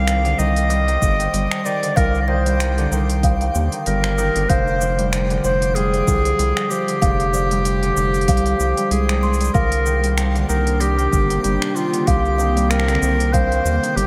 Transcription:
Already playing: C2 G3 C4 C5 F5 D6
0.07 D#3, finger snap, open hi-hat, cabasa
0.24 D3, open hi-hat, cabasa
0.38 C2 D#3 D#5, cabasa
0.56 open hi-hat, cabasa
0.70 G3 F6, open hi-hat, cabasa
0.88 D#3, open hi-hat, cabasa
1.02 G1 D3, kick, cabasa
1.19 D#3, open hi-hat, cabasa
1.33 G1 G3, open hi-hat, cabasa
1.51 finger snap, cabasa
1.65 D#3 D5, cabasa
1.83 D3, open hi-hat, cabasa
1.96 C2 D3 A#4 F5, kick, open hi-hat, cabasa
2.15 cabasa
2.22 D5
2.28 D#3 C5 D#5
2.46 G3, open hi-hat, cabasa
2.60 D#3, finger snap, open hi-hat, cabasa
2.78 D3, open hi-hat, cabasa
2.92 C2 D#3, cabasa
3.09 open hi-hat, cabasa
3.23 G3 F5, kick, open hi-hat, cabasa
3.41 D#3, open hi-hat, cabasa
3.55 D#2 D3, cabasa
3.72 D#3, open hi-hat, cabasa
3.86 G1 G3 A#4, open hi-hat, cabasa
4.04 finger snap, cabasa
4.18 D#3 F6, cabasa
4.36 G1 D3, open hi-hat, cabasa
4.49 F1 D3 C5 F5, kick, open hi-hat, cabasa
4.68 cabasa
4.81 F3, cabasa
4.99 G3, open hi-hat
5.13 F3, finger snap, open hi-hat, cabasa
5.30 D3, open hi-hat, cabasa
5.43 F1 F3 C5, cabasa
5.62 open hi-hat, cabasa
5.75 G3 G#4 F6, open hi-hat, cabasa
5.93 F3, open hi-hat, cabasa
6.07 C2 D3, kick, cabasa
6.25 F3, open hi-hat, cabasa
6.39 C2 G3, open hi-hat, cabasa
6.57 finger snap, cabasa
6.69 F3 G4, cabasa
6.88 D3, open hi-hat, cabasa
7.02 F1 D3 F5, kick, open hi-hat, cabasa
7.20 open hi-hat, cabasa
7.33 F3 D5, cabasa
7.51 G3, open hi-hat, cabasa
7.65 F3, open hi-hat, cabasa
7.83 D3, open hi-hat, cabasa
7.96 F1 F3, cabasa
8.14 open hi-hat, cabasa
8.21 open hi-hat
8.28 C2 G3 F5, kick, open hi-hat, cabasa
8.37 open hi-hat
8.46 F3, open hi-hat, cabasa
8.60 C2 G3, cabasa
8.77 G3, open hi-hat, cabasa
8.91 C2 G#3 G#4, open hi-hat, cabasa
9.09 finger snap, open hi-hat, cabasa
9.23 G#3 C6, cabasa
9.33 cabasa
9.40 G3, open hi-hat, cabasa
9.44 cabasa
9.54 C2 C3 D3 A#3 D4 A#4 C5 F5 D6, kick, cabasa
9.72 open hi-hat, cabasa
9.86 D#3, cabasa
10.03 G3, open hi-hat, cabasa
10.17 D#3, finger snap, open hi-hat, cabasa
10.35 D3, open hi-hat, cabasa
10.49 C2 D#3 A#4, cabasa
10.67 open hi-hat, cabasa
10.80 G3 G4 F6, open hi-hat, cabasa
10.98 D#3, open hi-hat, cabasa
11.12 G1 D3, kick, cabasa
11.30 D#3, open hi-hat, cabasa
11.43 G1 G3 G4, open hi-hat, cabasa
11.62 finger snap, cabasa
11.75 D#3 F4, cabasa
11.93 D3, open hi-hat, cabasa
12.06 C2 D3 C4 G4 F5, kick, open hi-hat, cabasa
12.25 cabasa
12.38 D#3 D#5, cabasa
12.56 G3, open hi-hat, cabasa
12.70 D#3 A#4, finger snap, open hi-hat, cabasa
12.80 finger snap
12.88 D3, finger snap, open hi-hat, cabasa
12.95 finger snap
13.02 C2 D#3, cabasa
13.20 open hi-hat, cabasa
13.32 G3 C5 F5, kick, open hi-hat, cabasa
13.52 D#3, open hi-hat, cabasa
13.65 D#2 D3, cabasa
13.83 D#3, open hi-hat, cabasa
13.96 G1 G3 G4, open hi-hat, cabasa

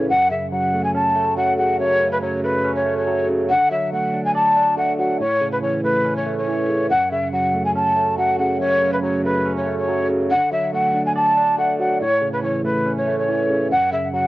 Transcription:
Already playing: A2 C#3 E3 A3 C#4
0.09 F#2 F#5
0.31 C#3 E5
0.52 F#3 F#5
0.73 A3
0.84 G#5
0.94 C#4 A5
1.16 A3
1.37 F#3 F#5
1.58 C#3 F#5
1.79 F#2 C#5
2.01 C#3
2.12 B4
2.22 F#3 C#5
2.43 A3 B4
2.64 C#4
2.76 C#5
2.86 A3
2.97 C#5
3.07 F#3
3.29 C#3
3.50 D3 F#5
3.71 F#3 E5
3.92 A3 F#5
4.14 D4
4.25 G#5
4.35 D5 A5
4.56 D4
4.77 A3 F#5
4.98 F#3 F#5
5.20 A2 C#5
5.41 C#3
5.52 B4
5.62 E3 C#5
5.84 A3 B4
6.05 C#4
6.16 C#5
6.26 A3
6.38 C#5
6.48 E3
6.69 C#3
6.90 F#2 F#5
7.11 C#3 E5
7.32 F#3 F#5
7.54 A3
7.65 G#5
7.75 C#4 A5
7.96 A3
8.18 F#3 F#5
8.39 C#3 F#5
8.60 F#2 C#5
8.81 C#3
8.93 B4
9.03 F#3 C#5
9.24 A3 B4
9.45 C#4
9.56 C#5
9.67 A3
9.78 C#5
9.88 F#3
10.10 C#3
10.31 D3 F#5
10.52 F#3 E5
10.73 A3 F#5
10.94 D4
11.06 G#5
11.16 D5 A5
11.37 D4
11.58 A3 F#5
11.79 F#3 F#5
12.01 A2 C#5
12.22 C#3
12.33 B4
12.43 E3 C#5
12.64 A3 B4
12.86 C#4
12.97 C#5
13.07 A3
13.19 C#5
13.28 E3
13.50 C#3
13.71 F#2 F#5
13.92 C#3 E5
14.13 F#3 F#5

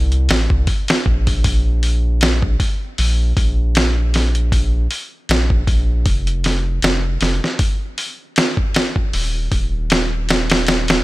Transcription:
Already playing: C2
0.12 closed hi-hat
0.29 A1, snare, open hi-hat
0.50 C2, kick
0.67 kick, open hi-hat
0.88 snare, open hi-hat
1.06 A#1, kick
1.27 kick, open hi-hat
1.44 kick, open hi-hat
1.83 open hi-hat
2.21 snare, open hi-hat
2.42 kick
2.60 kick, open hi-hat
2.98 A#1, open hi-hat
3.37 A#1, kick, open hi-hat
3.75 snare, open hi-hat
4.14 snare, open hi-hat
4.35 closed hi-hat
4.52 kick, open hi-hat
4.91 open hi-hat
5.29 A#1, snare, open hi-hat
5.50 kick
5.67 A#1, kick, open hi-hat
6.06 F1, kick, open hi-hat
6.27 closed hi-hat
6.44 snare, open hi-hat
6.82 F1, snare, open hi-hat
7.21 F1, snare, open hi-hat
7.44 snare
7.59 kick, open hi-hat
7.98 open hi-hat
8.36 snare, open hi-hat
8.57 kick
8.74 snare, open hi-hat
8.96 kick
9.13 D#1, open hi-hat
9.52 D#1, kick, open hi-hat
9.90 snare, open hi-hat
10.29 snare, open hi-hat
10.50 snare, open hi-hat
10.67 snare, open hi-hat
10.88 snare, open hi-hat

